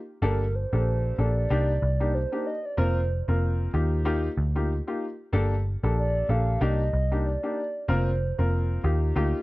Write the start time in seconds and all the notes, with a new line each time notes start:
0.22 G1 A#3 D4 G4 A4 A#4
0.55 C5
0.73 A#1 A#3 D4 G4 A4
1.18 A#1 A#3 D4 G4 A4 D5
1.50 C2 A#3 D4 D#4 G4
1.82 C2
2.00 A#3 D4 D#4 G4
2.15 C5
2.32 A#3 D4 D#4 G4
2.47 D#5
2.66 D5
2.77 F1 A#3 C4 F4 A#4 C5
3.28 F1 A#3 C4 F4 A#4
3.73 D#2 A#3 D#4 F4 G4
4.05 A#3 D#4 F4 G4
4.38 D2
4.56 A#3 D#4 F4 G4
4.88 A#3 D#4 F4 G4
5.33 G1 A#3 D4 G4 A4
5.83 A#1 A#3 D4 G4 A4
5.98 D5
6.29 A#1 A#3 D4 G4 A4 F5
6.61 C2 A#3 D4 D#4 G4 D#5
6.93 C2
7.11 A#3 D4 D#4 G4
7.26 D5
7.43 A#3 D4 D#4 G4
7.88 F1 A#3 C4 F4 A#4 C5
8.39 F1 A#3 C4 F4 A#4
8.84 D#2 A#3 D#4 F4 G4
9.16 D2 A#3 D#4 F4 G4